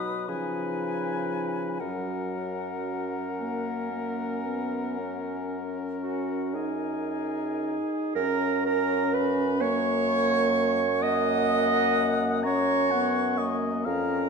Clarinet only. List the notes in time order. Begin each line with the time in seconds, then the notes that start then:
Already playing: D#4
0.29 D#4
1.80 C#4
6.01 F#4
6.54 G#4
8.15 A#4
8.65 A#4
9.13 B4
9.61 C#5
11.02 D#5
12.46 C#5
13.86 A#4